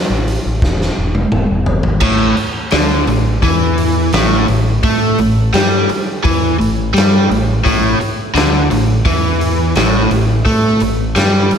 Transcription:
0.10 0.37 A1 medium
0.28 open hi-hat medium
0.46 0.59 A1 medium
0.62 0.89 E1 loud
0.62 kick loud
0.62 snare medium
0.81 snare medium
0.98 1.25 E1 loud
1.15 high tom medium
1.32 1.46 E1 medium
1.32 mid tom medium
1.50 1.66 E1 medium
1.66 1.84 F#1 medium
1.66 floor tom loud
1.83 2.01 G#1 loud
1.83 floor tom loud
2.00 2.35 A1 medium
2.00 2.36 A2 loud
2.00 kick loud
2.00 crash loud
2.37 muted overdriven electric guitar stroke medium
2.37 muted fingered electric bass stroke soft
2.37 open hi-hat medium
2.71 3.06 D2 medium
2.71 3.07 D3 loud
2.71 snare loud
2.71 open hi-hat medium
3.07 3.41 A1 medium
3.07 3.37 A2 medium
3.07 open hi-hat medium
3.42 4.09 E2 medium
3.42 4.13 E3 medium
3.42 kick loud
3.42 open hi-hat medium
3.78 open hi-hat medium
4.13 4.46 A1 medium
4.13 4.48 A2 loud
4.13 snare loud
4.13 open hi-hat medium
4.48 4.82 A1 medium
4.48 4.77 A2 medium
4.48 open hi-hat medium
4.83 5.17 A2 medium
4.83 5.18 A3 loud
4.83 kick loud
4.83 open hi-hat medium
5.18 5.52 A1 medium
5.18 5.48 A2 medium
5.18 open hi-hat medium
5.54 5.87 G2 medium
5.54 5.88 G3 medium
5.54 snare loud
5.54 open hi-hat medium
5.89 muted fingered electric bass stroke soft
5.89 muted overdriven electric guitar stroke medium
5.89 open hi-hat medium
6.24 6.58 E2 medium
6.24 6.59 E3 loud
6.24 kick loud
6.24 open hi-hat medium
6.59 6.92 A1 medium
6.59 6.88 A2 medium
6.59 open hi-hat medium
6.94 7.27 G2 medium
6.94 7.29 G3 loud
6.94 open hi-hat medium
6.98 snare loud
7.30 7.63 A1 medium
7.30 7.58 A2 medium
7.30 open hi-hat medium
7.64 7.98 A1 loud
7.64 7.99 A2 loud
7.64 kick loud
7.64 open hi-hat medium
8.00 muted fingered electric bass stroke soft
8.00 muted overdriven electric guitar stroke medium
8.00 open hi-hat medium
8.34 8.68 D2 loud
8.34 8.69 D3 loud
8.34 snare loud
8.34 open hi-hat medium
8.71 9.04 A1 medium
8.71 8.99 A2 medium
8.71 open hi-hat medium
9.05 9.72 E2 medium
9.05 9.75 E3 loud
9.05 kick loud
9.05 open hi-hat medium
9.41 open hi-hat medium
9.75 10.09 A1 medium
9.75 10.11 A2 loud
9.75 snare loud
9.75 open hi-hat medium
10.11 10.44 A1 medium
10.11 10.40 A2 medium
10.11 open hi-hat medium
10.45 10.79 A2 medium
10.45 10.80 A3 loud
10.45 kick loud
10.45 open hi-hat medium
10.80 11.14 A1 medium
10.80 11.10 A2 medium
10.80 open hi-hat medium
11.16 11.49 G2 medium
11.16 11.51 G3 loud
11.16 snare medium
11.16 open hi-hat medium
11.51 muted overdriven electric guitar stroke medium
11.51 muted fingered electric bass stroke soft
11.51 open hi-hat medium

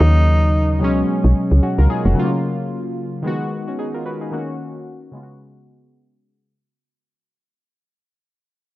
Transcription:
0.00 0.83 D#2 loud
0.00 0.81 C#3 medium
0.00 0.80 F#3 medium
0.00 0.82 A#3 medium
0.00 0.94 D#4 medium
0.00 0.82 D#4 medium
0.79 1.04 C#2 loud
0.79 2.13 B2 medium
0.79 2.14 F#3 medium
0.79 2.14 G#3 medium
0.84 1.62 C#4 medium
1.24 1.34 B1 medium
1.51 1.61 C#2 medium
1.63 1.78 C#4 medium
1.63 1.78 F#4 medium
1.78 1.88 C#2 medium
1.78 1.89 F4 medium
1.78 1.89 A#4 medium
1.90 2.05 D#4 medium
1.90 2.05 G#4 medium
2.05 2.15 F1 loud
2.05 2.31 C#4 medium
2.05 2.31 F#4 medium
2.14 3.21 C#3 medium
2.14 3.22 F#3 medium
2.14 2.25 A3 medium
2.19 3.24 F4 medium
2.24 3.27 A#3 medium
3.22 4.29 D#3 medium
3.22 4.30 G#3 medium
3.22 4.31 B3 medium
3.27 3.53 F#4 medium
3.68 3.79 C#4 medium
3.68 3.78 F#4 medium
3.79 3.94 D#4 medium
3.79 3.94 G#4 medium
3.94 4.06 F4 medium
3.94 4.05 A#4 medium
4.06 4.21 F#4 medium
4.06 4.21 B4 medium
4.21 4.47 D#4 medium
4.21 4.47 G#4 medium
4.32 5.13 D#3 medium
4.32 5.14 A#3 medium
4.32 5.14 C#4 medium
4.32 5.14 F#4 medium
5.11 6.45 C#3 medium
5.11 6.46 G#3 medium
5.11 6.47 B3 medium
5.16 5.23 F4 medium
5.23 6.51 F#4 medium

